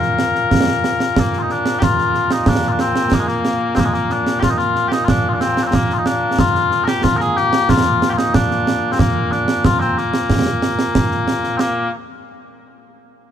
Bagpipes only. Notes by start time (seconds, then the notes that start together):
Already playing: A#2 A#3 A#4
1.19 A#3
1.38 D#4 F4
1.51 D4
1.79 G4
1.83 F4
2.32 D#4
2.48 D4
2.68 D4 F4
2.81 C4
3.13 A#3
3.19 G#3
3.27 A#3
3.75 C4
3.79 A#3
3.85 G#3
3.93 A#3
4.12 D4
4.40 F4 G4
4.50 D#4
4.58 F4
4.88 G4
4.92 D#4
5.04 F4
5.09 D4
5.29 F4
5.33 D4
5.41 C4
5.63 C4 D4
5.74 A#3
5.93 F4
5.98 D#4
6.06 D4
6.39 F4
6.84 G4 A#4
7.03 F4
7.17 A#4
7.21 G#4
7.37 G4
7.70 F4
8.10 F4 G4
8.17 D#4
8.34 D4
8.92 C4
8.99 A#3
9.31 D4
9.65 F4
9.80 C4
9.98 A#3
11.57 A#3 C4